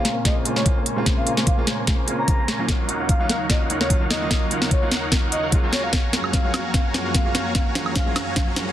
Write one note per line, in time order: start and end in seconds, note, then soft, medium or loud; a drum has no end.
0.00 2.65 A#2 medium
0.00 2.65 G#3 medium
0.00 0.23 A#3 loud
0.00 2.65 C4 medium
0.00 2.65 C#4 medium
0.00 0.23 A#4 loud
0.00 0.23 C5 medium
0.00 0.23 C#5 medium
0.00 0.16 F5 loud
0.00 0.23 G#5 loud
0.05 snare soft
0.05 closed hi-hat medium
0.24 0.43 C#3 medium
0.24 0.43 G#3 medium
0.24 0.43 A#3 medium
0.24 0.54 A#3 medium
0.24 0.44 C4 medium
0.24 0.44 F4 medium
0.24 0.54 A#4 medium
0.24 0.54 C5 medium
0.24 0.54 C#5 medium
0.24 0.35 D#5 medium
0.24 0.54 G#5 loud
0.24 kick medium
0.24 snare soft
0.24 closed hi-hat medium
0.45 0.63 C#3 medium
0.45 0.63 G#3 medium
0.45 0.64 A#3 medium
0.45 0.64 C4 medium
0.45 0.64 F4 medium
0.45 closed hi-hat medium
0.56 0.73 A#3 medium
0.56 0.73 A#4 medium
0.56 0.73 C5 medium
0.56 0.65 C#5 medium
0.56 0.73 C#5 medium
0.56 0.73 G#5 loud
0.56 snare soft
0.65 0.76 C#3 medium
0.65 0.77 G#3 medium
0.65 0.77 A#3 medium
0.65 0.77 C4 medium
0.65 0.77 F4 loud
0.65 kick medium
0.65 closed hi-hat medium
0.77 1.04 A#3 medium
0.77 1.04 A#4 medium
0.77 1.04 C5 medium
0.77 1.04 C#5 medium
0.77 1.04 G#5 medium
0.86 closed hi-hat medium
0.96 1.24 C#3 medium
0.96 1.24 G#3 medium
0.96 1.24 A#3 medium
0.96 1.25 C4 medium
0.96 1.25 F4 loud
1.06 1.35 A#3 medium
1.06 1.35 A#4 medium
1.06 1.35 C5 medium
1.06 1.35 C#5 medium
1.06 1.35 G#5 medium
1.06 kick medium
1.06 snare medium
1.06 closed hi-hat medium
1.17 1.26 F5 medium
1.26 1.55 C#3 medium
1.26 1.55 G#3 medium
1.26 1.55 A#3 medium
1.26 1.55 C4 medium
1.26 1.56 F4 medium
1.26 closed hi-hat medium
1.37 1.51 A#3 medium
1.37 1.51 A#4 medium
1.37 1.51 C5 medium
1.37 1.51 C#5 medium
1.37 1.51 G#5 medium
1.37 snare soft
1.47 1.57 F5 medium
1.47 kick loud
1.47 closed hi-hat medium
1.57 1.63 C#3 medium
1.57 1.64 G#3 medium
1.57 1.85 A#3 loud
1.57 1.64 A#3 medium
1.57 1.64 C4 medium
1.57 1.64 F4 loud
1.57 1.85 A#4 loud
1.57 1.85 C5 medium
1.57 1.85 C#5 loud
1.57 1.85 G#5 loud
1.67 snare soft
1.67 closed hi-hat medium
1.86 2.05 C#3 medium
1.86 2.05 G#3 medium
1.86 2.05 A#3 medium
1.86 2.16 A#3 medium
1.86 2.06 C4 medium
1.86 2.06 F4 medium
1.86 2.16 A#4 medium
1.86 2.16 C5 medium
1.86 2.16 C#5 medium
1.86 2.16 G#5 loud
1.86 kick medium
1.86 snare medium
1.86 closed hi-hat medium
2.07 2.25 C#3 medium
2.07 2.26 G#3 medium
2.07 2.26 A#3 medium
2.07 2.26 C4 medium
2.07 2.26 F4 medium
2.07 closed hi-hat medium
2.18 2.36 A#3 medium
2.18 2.36 A#4 medium
2.18 2.36 C5 medium
2.18 2.35 C#5 medium
2.18 2.36 G#5 loud
2.18 2.59 A#5 loud
2.27 2.39 C#3 medium
2.27 2.39 G#3 medium
2.27 2.39 A#3 medium
2.27 2.39 C4 medium
2.27 2.40 F4 medium
2.27 kick loud
2.27 closed hi-hat medium
2.39 2.66 A#3 medium
2.39 2.66 A#4 medium
2.39 2.66 C5 medium
2.39 2.66 C#5 medium
2.39 2.66 G#5 loud
2.48 snare medium
2.48 closed hi-hat medium
2.58 2.86 D#3 loud
2.58 2.86 F#3 medium
2.58 2.86 A#3 medium
2.58 2.87 C#4 medium
2.58 2.87 F4 loud
2.68 5.70 D#2 medium
2.68 5.69 C#3 medium
2.68 5.69 F#3 medium
2.68 2.97 D#4 medium
2.68 2.97 A#4 medium
2.68 2.97 C#5 medium
2.68 2.97 F5 medium
2.68 2.97 F#5 medium
2.68 kick medium
2.68 snare medium
2.68 closed hi-hat medium
2.88 3.17 D#3 medium
2.88 3.17 F#3 medium
2.88 3.17 A#3 medium
2.88 3.17 C#4 medium
2.88 3.18 F4 medium
2.88 closed hi-hat medium
3.00 3.13 D#4 medium
3.00 3.13 A#4 medium
3.00 3.13 C#5 medium
3.00 3.13 F5 medium
3.00 3.13 F#5 medium
3.09 3.40 F5 medium
3.09 kick loud
3.09 closed hi-hat medium
3.19 3.25 D#3 medium
3.19 3.26 F#3 medium
3.19 3.26 A#3 medium
3.19 3.26 C#4 medium
3.19 3.47 D#4 loud
3.19 3.26 F4 loud
3.19 3.47 A#4 loud
3.19 3.47 C#5 medium
3.19 3.47 F5 medium
3.19 3.47 F#5 loud
3.29 snare medium
3.29 closed hi-hat medium
3.49 3.67 D#3 medium
3.49 3.67 F#3 medium
3.49 3.68 A#3 medium
3.49 3.68 C#4 medium
3.49 3.78 D#4 medium
3.49 3.68 F4 medium
3.49 3.78 A#4 medium
3.49 3.78 C#5 medium
3.49 3.60 D#5 loud
3.49 3.78 F5 medium
3.49 3.78 F#5 loud
3.49 kick loud
3.49 snare medium
3.49 closed hi-hat medium
3.69 3.87 D#3 medium
3.69 3.88 F#3 medium
3.69 3.88 A#3 medium
3.69 3.88 C#4 medium
3.69 3.88 F4 medium
3.69 closed hi-hat medium
3.81 3.98 D#4 medium
3.81 3.98 A#4 medium
3.81 3.98 C#5 medium
3.81 3.90 C#5 medium
3.81 3.98 F5 medium
3.81 3.98 F#5 loud
3.81 snare medium
3.89 4.01 D#3 medium
3.89 4.01 F#3 medium
3.89 4.01 A#3 medium
3.89 4.01 C#4 medium
3.89 4.02 F4 loud
3.89 kick medium
3.89 closed hi-hat medium
4.01 4.28 D#4 medium
4.01 4.28 A#4 medium
4.01 4.28 C#5 medium
4.01 4.28 F5 medium
4.01 4.28 F#5 loud
4.11 4.42 D#5 medium
4.11 snare medium
4.11 closed hi-hat medium
4.20 4.48 D#3 loud
4.20 4.48 F#3 medium
4.20 4.49 A#3 medium
4.20 4.49 C#4 medium
4.20 4.49 F4 loud
4.31 4.59 D#4 medium
4.31 4.59 A#4 medium
4.31 4.59 C#5 medium
4.31 4.59 F5 medium
4.31 4.59 F#5 medium
4.31 kick medium
4.31 snare medium
4.31 closed hi-hat medium
4.50 4.79 D#3 medium
4.50 4.79 F#3 medium
4.50 4.79 A#3 medium
4.50 4.80 C#4 medium
4.50 4.80 F4 medium
4.50 closed hi-hat medium
4.62 4.75 D#4 medium
4.62 4.75 A#4 medium
4.62 4.75 C#5 medium
4.62 4.75 F5 medium
4.62 4.75 F#5 medium
4.62 snare medium
4.71 4.81 C#5 loud
4.71 kick loud
4.71 closed hi-hat medium
4.81 4.88 D#3 medium
4.81 4.88 F#3 medium
4.81 4.88 A#3 medium
4.81 4.88 C#4 medium
4.81 5.10 D#4 loud
4.81 4.89 F4 loud
4.81 5.10 A#4 loud
4.81 5.10 C#5 loud
4.81 5.10 F5 loud
4.81 5.10 F#5 loud
4.92 snare medium
4.92 closed hi-hat medium
5.11 5.29 D#3 medium
5.11 5.29 F#3 medium
5.11 5.30 A#3 medium
5.11 5.30 C#4 medium
5.11 5.40 D#4 medium
5.11 5.30 F4 medium
5.11 5.40 A#4 medium
5.11 5.40 C#5 medium
5.11 5.40 F5 medium
5.11 5.40 F#5 loud
5.11 kick loud
5.11 snare medium
5.11 closed hi-hat medium
5.32 5.42 D#5 medium
5.32 closed hi-hat medium
5.43 5.60 D#4 medium
5.43 5.60 A#4 medium
5.43 5.60 C#5 medium
5.43 5.60 F5 medium
5.43 5.60 F#5 loud
5.50 5.92 F#3 medium
5.50 5.92 G#3 medium
5.50 5.93 A#3 medium
5.50 5.93 C#4 medium
5.50 kick loud
5.50 closed hi-hat medium
5.54 5.94 F4 loud
5.63 5.91 F#4 medium
5.63 5.91 C#5 medium
5.63 5.91 F5 medium
5.63 5.91 G#5 medium
5.63 5.91 A#5 loud
5.73 8.72 F#2 medium
5.73 8.72 F3 medium
5.73 8.72 A#3 medium
5.73 5.81 C#5 medium
5.73 snare medium
5.73 closed hi-hat medium
5.83 5.90 F5 medium
5.93 6.21 F#4 medium
5.93 6.21 C#5 medium
5.93 6.00 F5 medium
5.93 6.21 F5 medium
5.93 6.21 G#5 medium
5.93 6.21 A#5 medium
5.93 kick loud
5.93 snare medium
5.93 closed hi-hat medium
5.93 riser medium
6.12 6.41 F#3 medium
6.12 6.41 G#3 medium
6.12 6.42 A#3 medium
6.12 6.42 C#4 medium
6.12 6.42 F4 medium
6.12 snare medium
6.12 closed hi-hat medium
6.24 6.37 F#4 medium
6.24 6.37 C#5 medium
6.24 6.37 F5 medium
6.24 6.37 G#5 medium
6.24 6.37 A#5 medium
6.24 high woodblock medium
6.33 6.64 F5 medium
6.33 kick loud
6.33 snare medium
6.33 closed hi-hat medium
6.43 6.50 F#3 medium
6.43 6.50 G#3 medium
6.43 6.50 A#3 medium
6.43 6.51 C#4 medium
6.43 6.51 F4 medium
6.43 6.72 F#4 loud
6.43 6.72 C#5 medium
6.43 6.72 F5 medium
6.43 6.72 G#5 medium
6.43 6.72 A#5 loud
6.54 snare medium
6.54 closed hi-hat medium
6.54 high woodblock medium
6.74 7.02 F#4 medium
6.74 7.02 C#5 medium
6.74 7.02 F5 medium
6.74 6.81 F5 medium
6.74 7.02 G#5 medium
6.74 7.02 A#5 medium
6.74 kick loud
6.74 snare medium
6.74 closed hi-hat medium
6.93 7.22 F#3 medium
6.93 7.22 G#3 medium
6.93 7.23 A#3 medium
6.93 7.23 C#4 medium
6.93 7.23 F4 medium
6.93 snare medium
6.93 closed hi-hat medium
7.05 7.19 F#4 medium
7.05 7.18 C#5 medium
7.05 7.18 F5 medium
7.05 7.19 G#5 medium
7.05 7.18 A#5 medium
7.14 7.46 F5 medium
7.14 kick loud
7.14 snare medium
7.14 closed hi-hat medium
7.24 7.31 F#3 medium
7.24 7.31 G#3 medium
7.24 7.31 A#3 medium
7.24 7.32 C#4 medium
7.24 7.32 F4 medium
7.24 7.53 F#4 medium
7.24 7.53 C#5 medium
7.24 7.53 F5 medium
7.24 7.53 G#5 medium
7.24 7.53 A#5 loud
7.35 snare medium
7.35 closed hi-hat medium
7.55 7.83 F#4 medium
7.55 7.84 C#5 medium
7.55 7.83 F5 medium
7.55 7.62 F5 medium
7.55 7.83 G#5 medium
7.55 7.83 A#5 medium
7.55 kick loud
7.55 snare medium
7.55 closed hi-hat medium
7.74 8.03 F#3 medium
7.74 8.04 G#3 medium
7.74 8.04 A#3 medium
7.74 8.04 C#4 medium
7.74 8.04 F4 medium
7.74 snare medium
7.74 closed hi-hat medium
7.86 8.00 F#4 medium
7.86 8.00 C#5 medium
7.86 8.00 F5 medium
7.86 8.00 G#5 medium
7.86 8.00 A#5 medium
7.86 high woodblock medium
7.96 8.27 F5 medium
7.96 kick loud
7.96 snare medium
7.96 closed hi-hat medium
8.05 8.12 F#3 medium
8.05 8.12 G#3 medium
8.05 8.13 A#3 medium
8.05 8.13 C#4 medium
8.05 8.13 F4 loud
8.05 8.34 F#4 loud
8.05 8.34 C#5 medium
8.05 8.34 F5 medium
8.05 8.34 G#5 medium
8.05 8.34 A#5 loud
8.16 snare medium
8.16 closed hi-hat medium
8.16 high woodblock medium
8.36 8.65 F#4 medium
8.36 8.65 C#5 medium
8.36 8.65 F5 medium
8.36 8.43 F5 medium
8.36 8.65 G#5 medium
8.36 8.65 A#5 medium
8.36 kick loud
8.36 snare medium
8.36 closed hi-hat medium
8.55 8.72 F#3 medium
8.55 8.72 G#3 medium
8.55 8.72 A#3 medium
8.55 8.72 C#4 medium
8.55 8.72 F4 medium
8.55 snare medium
8.55 closed hi-hat medium
8.67 8.72 F#4 medium
8.67 8.72 C#5 medium
8.67 8.72 F5 medium
8.67 8.72 G#5 medium
8.67 8.72 A#5 medium